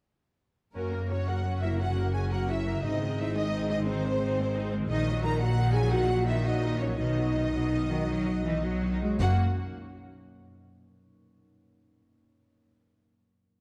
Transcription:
0.74 double bass section F#1, cello section F#2, harp F#2, french horn section A#3, viola section C#4 F#4, violin section A#4
0.93 viola section A#3 A#4, harp F#4
1.01 harp A#4
1.09 viola section C#4 F#4, french horn section C#4, harp C#5, violin section C#5
1.18 harp F#5
1.27 viola section A#3 A#4, french horn section F#4, violin section F#5, harp A#5
1.36 harp F#5
1.45 viola section C#4 F#4, harp C#5
1.53 harp A#4
1.60 viola section A#3 A#4, french horn section E4, harp F#4, violin section E5
1.70 harp C#3
1.79 harp C#4, viola section C#4 F#4, french horn section F#4, violin section F#5
1.88 harp C#3
1.96 viola section A#3 A#4, harp F#4
2.05 harp A#4
2.14 viola section C#4 F#4, french horn section G#4, harp C#5, violin section G#5
2.23 harp F#5
2.30 viola section A#3 A#4, french horn section F#4, violin section F#5, harp A#5
2.40 harp F#5
2.48 viola section C#4 F#4, french horn section E4, harp C#5, violin section E5
2.57 harp A#4
2.66 viola section A#3 A#4, harp F#4
2.74 harp C#3
2.83 double bass section G#1, harp G#2, cello section G#2, viola section C4 D#4, french horn section D#4, violin section D#5
2.92 harp C4
3.00 viola section G#3 C4, harp D#4
3.08 harp G#4
3.17 viola section C4 D#4, french horn section E4, harp C5, violin section E5
3.26 harp D#5
3.35 viola section G#3 C4, french horn section D#4, violin section D#5, harp G#5
3.44 harp D#5
3.52 viola section C4 D#4, harp C5
3.60 harp G#4
3.70 viola section G#3 C4, french horn section D#4, harp D#4, violin section D#5
3.78 harp D#3
3.86 harp C4, french horn section C4, viola section C4 D#4, violin section C5
3.94 harp D#3
4.03 viola section G#3 C4, harp D#4
4.11 harp G#4
4.20 viola section C4 D#4, harp C5
4.28 harp D#5
4.36 viola section G#3 C4, harp G#5
4.46 harp D#5
4.54 viola section C4 D#4, harp C5
4.63 harp G#4
4.71 viola section G#3 C4, harp D#4
4.80 harp D#3
4.89 double bass section A#1, harp A#2, cello section A#2, viola section D#3 D#4, french horn section D#4, violin section D#5
4.97 harp A#3
5.05 viola section F#3 F#4, harp D#4
5.14 harp F#4
5.23 viola section D#3 D#4, harp A#4, french horn section A#4, violin section A#5
5.32 harp D#5
5.40 viola section F#3 F#4, french horn section F#4, harp F#5, violin section F#5
5.49 harp D#5
5.58 viola section D#3 D#4, harp A#4
5.67 harp F#4
5.74 viola section F#3 F#4, harp D#4, french horn section G#4, violin section G#5
5.84 harp F#3
5.91 viola section D#3 D#4, harp A#3, french horn section F#4, violin section F#5
6.01 harp F#3
6.08 viola section F#3 F#4, harp D#4
6.18 harp F#4
6.26 viola section D#3 D#4, french horn section E4, harp A#4, violin section E5
6.35 harp D#5
6.43 viola section F#3 F#4, french horn section D#4, violin section D#5, harp F#5
6.62 viola section D#3 D#4, harp A#4
6.71 harp F#4
6.79 viola section F#3 F#4, french horn section C#4, harp D#4, violin section C#5
6.88 harp F#3
6.98 double bass section B1, harp B2, cello section B2, viola section D#3 D#4, french horn section D#4, violin section D#5
7.06 harp F#3
7.16 viola section F#3 F#4, harp D#4
7.25 harp F#4
7.35 viola section D#3 D#4, harp D#4
7.44 harp D#5
7.53 cello section B2, viola section F#3 F#4, harp F#5
7.61 harp D#5
7.71 viola section D#3 D#4, harp F#4
7.80 harp D#4
7.89 cello section D#3, harp F#3, viola section F#3 F#4
7.98 harp B3
8.07 viola section D#3 D#4, harp F#3, cello section F#3
8.16 harp B3
8.25 viola section F#3 F#4, harp D#4
8.35 harp F#4
8.44 viola section D#3 D#4, cello section E3, harp D#4
8.53 harp D#5
8.62 viola section F#3 F#4, cello section F#3, harp F#5
8.72 harp D#5
8.82 viola section D#3 D#4, harp F#4
8.92 harp D#4
9.01 harp F#3, viola section F#3 F#4, cello section G#3
9.11 harp B3
9.17 double bass section F#1, harp F#2 F#3 A#3, cello section F#2, viola section A#3 F#4, french horn section F#4, violin section F#5
9.21 harp C#4 F#4 C#5

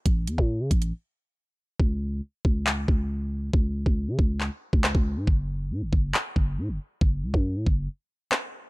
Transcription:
0.06 808-style bass A1, kick, closed hi-hat
0.27 808-style bass E2, closed hi-hat
0.38 808-style bass A2, kick
0.60 808-style bass C#3
0.71 808-style bass A1, kick, closed hi-hat
0.82 closed hi-hat
1.80 808-style bass C#2, kick
2.45 808-style bass C#2, kick
2.67 clap
2.88 808-style bass C#2, kick
3.53 808-style bass C#2, kick
3.86 808-style bass C#2, kick
4.08 808-style bass C#3
4.19 808-style bass C#2, kick
4.40 clap
4.73 808-style bass C#2, kick
4.84 cross-stick, clap
4.95 808-style bass C#2, kick
5.17 808-style bass G#2
5.27 808-style bass F#1, kick
5.71 808-style bass A2
5.82 808-style bass F#1
5.93 808-style bass F#1, kick
6.14 clap
6.36 808-style bass F#1, kick
6.58 808-style bass A2
6.69 808-style bass F#1
7.01 808-style bass F#1, kick
7.23 808-style bass C#2
7.34 808-style bass F#2, kick
7.56 808-style bass A2
7.67 808-style bass F#1, kick
8.32 cross-stick, clap

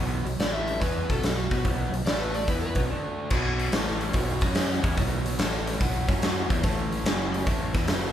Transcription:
Already playing: fingered electric bass B1, overdriven electric guitar B2 F#3
0.00 overdriven electric guitar B3
0.25 fingered electric bass B1, overdriven electric guitar B2 F#3, open hi-hat
0.39 fingered electric bass A1, overdriven electric guitar A2 E3 A3, electric slide guitar D5, snare, open hi-hat
0.53 electric slide guitar E5
0.68 open hi-hat
0.80 fingered electric bass E2, overdriven electric guitar E3 B3 E4, electric slide guitar B4, kick, open hi-hat
1.09 fingered electric bass B1, overdriven electric guitar B2 F#3 B3, electric slide guitar A4, kick, open hi-hat
1.23 fingered electric bass B1, overdriven electric guitar B2 F#3, snare, open hi-hat
1.36 electric slide guitar F#4
1.51 fingered electric bass B2, overdriven electric guitar B3 F#4 B4, kick, open hi-hat
1.65 fingered electric bass B1, overdriven electric guitar B2 F#3 B3, kick, open hi-hat
1.92 fingered electric bass B1, overdriven electric guitar B2 F#3, open hi-hat
2.06 fingered electric bass A1, overdriven electric guitar A2 E3 A3, electric slide guitar D5, snare, open hi-hat
2.20 electric slide guitar B4
2.34 electric slide guitar D5, open hi-hat
2.48 fingered electric bass E2, overdriven electric guitar E3 B3 E4, electric slide guitar B4, kick, open hi-hat
2.61 electric slide guitar B4
2.75 fingered electric bass B1, overdriven electric guitar B2 F#3 B3, kick, open hi-hat
2.90 overdriven electric guitar D3 A3 D4
3.30 fingered electric bass B1, overdriven electric guitar B2 F#3 B3, kick, crash
3.60 open hi-hat
3.72 fingered electric bass A1, overdriven electric guitar A2 E3 A3, snare, open hi-hat
4.01 open hi-hat
4.13 fingered electric bass B1, overdriven electric guitar B2 F#3 B3, kick, open hi-hat
4.41 fingered electric bass F#2, overdriven electric guitar F#3 C#4 F#4, kick, snare, open hi-hat
4.55 snare, open hi-hat
4.83 fingered electric bass E2, overdriven electric guitar E3 B3 E4, kick, open hi-hat
4.97 fingered electric bass B1, overdriven electric guitar B2 F#3 B3, kick, open hi-hat
5.26 open hi-hat
5.39 fingered electric bass A1, overdriven electric guitar A2 E3 A3, snare, open hi-hat
5.67 open hi-hat
5.80 fingered electric bass B1, overdriven electric guitar B2 F#3 B3, kick, open hi-hat
6.08 fingered electric bass F#2, overdriven electric guitar F#3 C#4 F#4, kick, open hi-hat
6.22 snare, open hi-hat
6.50 fingered electric bass E2, overdriven electric guitar E3 B3 E4, kick, open hi-hat
6.63 fingered electric bass A1, overdriven electric guitar A2 E3 A3, kick, open hi-hat
6.93 open hi-hat
7.04 fingered electric bass F#1, overdriven electric guitar F#2 C#3 F#3, snare, open hi-hat
7.34 open hi-hat
7.46 fingered electric bass A1, overdriven electric guitar A2 E3 A3, kick, open hi-hat
7.74 fingered electric bass E2, overdriven electric guitar E3 B3 E4, kick, snare, open hi-hat
7.88 fingered electric bass F#1, overdriven electric guitar F#2 C#3 F#3, snare, open hi-hat

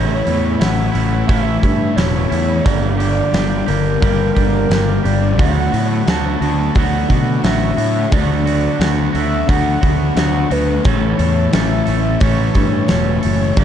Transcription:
Already playing: picked electric bass A1, clean electric guitar A2 E3 A3 C#4 E4, soft synth lead C#5
0.25 picked electric bass E2, distorted electric guitar E3, clean electric guitar A3 C#4 E4, open hi-hat
0.58 picked electric bass A1, distorted electric guitar A2, clean electric guitar E3 A3 C#4 E4, soft synth lead F#5, snare, open hi-hat
0.92 picked electric bass A1, clean electric guitar A3 C#4 E4, open hi-hat
0.97 distorted electric guitar E3
1.26 picked electric bass A1, clean electric guitar A2 E3 A3 C#4 E4, soft synth lead E5, kick, open hi-hat
1.60 picked electric bass G2, clean electric guitar A3 C#4 E4, kick, open hi-hat
1.65 distorted electric guitar E3
1.95 picked electric bass E1, distorted electric guitar A2, clean electric guitar E3 A3 C#4 E4, soft synth lead C#5, snare, open hi-hat
2.30 picked electric bass E2, distorted electric guitar E3, clean electric guitar A3 C#4 E4, open hi-hat
2.63 picked electric bass G1, clean electric guitar G2 D3 G3 A#3 D4 G4, soft synth lead D5, kick, open hi-hat
2.98 distorted electric guitar D3, clean electric guitar G3 A#3 D4 G4, soft synth lead D5, open hi-hat
3.32 picked electric bass G1, distorted electric guitar G2 D3, clean electric guitar G3 A#3 D4 G4, snare, open hi-hat
3.66 picked electric bass G1, distorted electric guitar D3, clean electric guitar G3 A#3 D4 G4, soft synth lead A#4, open hi-hat
4.00 picked electric bass G1, clean electric guitar G2 D3 G3 A#3 D4 G4, kick, open hi-hat
4.35 picked electric bass G1, distorted electric guitar D3, clean electric guitar G3 A#3 D4 G4, kick, open hi-hat
4.69 picked electric bass G1, distorted electric guitar G2 D3, clean electric guitar G3 A#3 D4 G4, snare, open hi-hat
5.03 picked electric bass G1, distorted electric guitar D3, clean electric guitar G3 A#3 D4 G4, soft synth lead D5, open hi-hat
5.37 picked electric bass D2, clean electric guitar D3 F#3 A3 B3 F#4, distorted electric guitar D4, soft synth lead F#5, kick, open hi-hat
5.72 picked electric bass A2, clean electric guitar A3 B3 F#4, distorted electric guitar D4, open hi-hat
6.06 picked electric bass D2, distorted electric guitar D3 D4, clean electric guitar F#3 A3 B3 F#4, soft synth lead A5, snare, open hi-hat
6.41 picked electric bass D2, clean electric guitar A3 B3 F#4, distorted electric guitar D4, open hi-hat
6.75 picked electric bass D2, clean electric guitar D3 F#3 A3 B3 F#4, distorted electric guitar D4, soft synth lead F#5, kick, open hi-hat
7.10 picked electric bass B2, clean electric guitar A3 B3 F#4, distorted electric guitar D4, kick, open hi-hat
7.43 picked electric bass A1, distorted electric guitar D3 D4, clean electric guitar F#3 A3 B3 F#4, soft synth lead E5, snare, open hi-hat
7.77 picked electric bass A2, clean electric guitar A3 B3 F#4, distorted electric guitar D4, open hi-hat
8.11 picked electric bass D2, clean electric guitar D3 F#3 A3 B3 F#4, distorted electric guitar D4, soft synth lead D5, kick, open hi-hat
8.44 clean electric guitar B3 F#4, distorted electric guitar D4, open hi-hat
8.49 clean electric guitar A3
8.79 picked electric bass D2, distorted electric guitar D3 D4, clean electric guitar F#3 A3 B3 F#4, snare, open hi-hat
9.13 picked electric bass D2, clean electric guitar A3 B3 F#4, distorted electric guitar D4, soft synth lead E5, open hi-hat
9.46 picked electric bass D2, clean electric guitar D3 F#3 A3 B3 F#4, distorted electric guitar D4, soft synth lead F#5, kick, open hi-hat
9.81 picked electric bass D2, clean electric guitar A3 B3 F#4, distorted electric guitar D4, kick, open hi-hat
10.15 picked electric bass D2, distorted electric guitar D3 D4, clean electric guitar F#3 A3 B3 F#4, snare, open hi-hat
10.50 picked electric bass D2, clean electric guitar A3 B3 F#4, distorted electric guitar D4, soft synth lead B4, open hi-hat
10.84 picked electric bass A1, clean electric guitar A2 E3 A3 C#4 A4, soft synth lead C#5, kick, open hi-hat
11.18 picked electric bass E2, distorted electric guitar E3, clean electric guitar A3 C#4 A4, open hi-hat
11.52 picked electric bass A1, distorted electric guitar A2, clean electric guitar E3 A3 C#4 A4, soft synth lead E5, snare, open hi-hat
11.85 picked electric bass A1, distorted electric guitar E3, clean electric guitar A3 C#4 A4, open hi-hat
12.20 picked electric bass A1, clean electric guitar A2 E3 A3 C#4 A4, soft synth lead C#5, kick, open hi-hat
12.54 picked electric bass G2, distorted electric guitar E3, clean electric guitar A3 C#4 A4, kick, open hi-hat
12.87 distorted electric guitar A2, clean electric guitar E3 A3 C#4 A4, snare, open hi-hat
12.91 picked electric bass E1
13.22 picked electric bass F#1, distorted electric guitar E3, clean electric guitar A3 C#4 A4, open hi-hat
13.56 picked electric bass G1, clean electric guitar G2 D3 G3 A#3 D4 G4, soft synth lead D5, kick, open hi-hat

